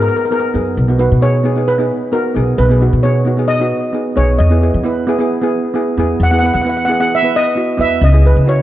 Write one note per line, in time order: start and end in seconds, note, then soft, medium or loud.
0.00 0.18 B3 medium
0.00 0.18 D#4 medium
0.00 0.19 G#4 medium
0.00 0.07 A#4 medium
0.09 0.15 A#4 medium
0.17 0.24 A#4 medium
0.25 0.31 A#4 medium
0.31 0.45 B3 medium
0.31 0.46 D#4 medium
0.31 0.46 G#4 medium
0.31 0.39 A#4 medium
0.40 0.47 A#4 medium
0.54 0.74 F#2 medium
0.54 0.75 B3 medium
0.54 0.75 D#4 medium
0.54 0.75 G#4 medium
0.77 1.07 B1 medium
0.88 0.95 B3 medium
0.88 0.95 D#4 medium
0.88 0.96 F#4 medium
0.98 1.13 B3 medium
0.98 1.14 D#4 medium
0.98 1.14 F#4 medium
0.98 1.23 B4 medium
1.12 1.88 B2 medium
1.21 1.36 B3 medium
1.21 1.37 D#4 medium
1.21 1.37 G#4 medium
1.21 1.69 C#5 medium
1.44 1.52 B3 medium
1.44 1.52 D#4 medium
1.44 1.52 G#4 medium
1.56 1.69 B3 medium
1.56 1.70 D#4 medium
1.56 1.70 G#4 medium
1.68 2.10 B4 medium
1.78 1.99 B3 medium
1.78 2.00 D#4 medium
1.78 2.00 G#4 medium
2.12 2.27 B3 medium
2.12 2.27 D#4 medium
2.12 2.28 F#4 medium
2.12 2.60 A#4 medium
2.34 2.55 B1 medium
2.34 2.56 B3 medium
2.34 2.56 D#4 medium
2.34 2.57 G#4 medium
2.58 2.88 B1 medium
2.58 3.05 B4 medium
2.70 2.76 B3 medium
2.70 2.77 D#4 medium
2.70 2.77 G#4 medium
2.80 2.95 B3 medium
2.80 2.95 D#4 medium
2.80 2.96 F#4 medium
2.93 3.70 B2 medium
3.03 3.18 B3 medium
3.03 3.18 D#4 medium
3.03 3.18 G#4 medium
3.03 3.50 C#5 medium
3.25 3.33 B3 medium
3.25 3.33 D#4 medium
3.25 3.34 F#4 medium
3.37 3.51 B3 medium
3.37 3.51 D#4 medium
3.37 3.52 G#4 medium
3.48 4.12 D#5 loud
3.59 3.81 B3 medium
3.59 3.81 D#4 medium
3.59 3.81 F#4 medium
3.93 4.08 B3 medium
3.93 4.08 D#4 medium
3.93 4.09 G#4 medium
4.16 4.36 B1 medium
4.16 4.37 B3 medium
4.16 4.37 D#4 medium
4.16 4.38 G#4 medium
4.16 4.27 C#5 medium
4.38 4.69 E2 loud
4.38 4.60 D#5 medium
4.50 4.57 B3 medium
4.50 4.58 E4 medium
4.50 4.58 G#4 medium
4.61 4.76 B3 medium
4.61 4.76 E4 medium
4.61 4.77 G#4 medium
4.74 5.51 E3 medium
4.83 4.98 B3 medium
4.83 4.99 E4 medium
4.83 4.99 B4 medium
5.07 5.15 B3 medium
5.07 5.15 E4 medium
5.07 5.15 G#4 loud
5.19 5.32 B3 medium
5.19 5.33 E4 medium
5.19 5.33 G#4 medium
5.42 5.62 B3 medium
5.42 5.62 E4 medium
5.42 5.63 G#4 loud
5.74 5.89 B3 medium
5.74 5.89 E4 medium
5.74 5.90 G#4 medium
5.98 6.17 E2 medium
5.98 6.18 B3 medium
5.98 6.19 E4 medium
5.98 6.19 G#4 medium
6.20 6.49 E2 loud
6.20 6.30 F#5 medium
6.31 6.38 B3 medium
6.31 6.39 E4 medium
6.31 6.39 G#4 medium
6.31 6.38 F#5 medium
6.39 6.57 B3 medium
6.39 6.45 F#5 medium
6.44 6.57 E4 medium
6.44 6.58 B4 medium
6.44 6.52 F#5 medium
6.54 7.31 E3 medium
6.54 6.60 F#5 medium
6.62 6.79 B3 medium
6.62 6.67 F#5 medium
6.66 6.80 E4 medium
6.66 6.80 B4 medium
6.66 6.76 F#5 medium
6.77 6.83 F#5 medium
6.85 6.95 B3 medium
6.85 6.96 E4 medium
6.85 6.90 F#5 medium
6.89 6.96 G#4 medium
6.89 6.98 F#5 medium
7.00 7.13 B3 medium
7.00 7.14 E4 medium
7.00 7.14 G#4 medium
7.00 7.06 F#5 medium
7.15 7.36 E5 loud
7.22 7.43 B3 medium
7.22 7.43 E4 medium
7.22 7.44 B4 medium
7.36 7.81 D#5 loud
7.55 7.70 B3 medium
7.55 7.70 E4 medium
7.55 7.71 F#4 medium
7.78 7.98 E2 medium
7.78 7.99 B3 medium
7.78 7.99 E4 medium
7.78 8.00 B4 medium
7.78 8.03 E5 medium
8.01 8.30 C#2 loud
8.01 8.26 D#5 medium
8.12 8.19 C#4 medium
8.12 8.20 E4 medium
8.12 8.20 G#4 medium
8.23 8.38 C#4 medium
8.23 8.38 E4 medium
8.23 8.39 G#4 medium
8.23 8.48 B4 medium
8.36 8.62 C#3 medium
8.45 8.60 C#4 medium
8.45 8.60 E4 medium
8.45 8.61 F#4 medium
8.45 8.62 C#5 medium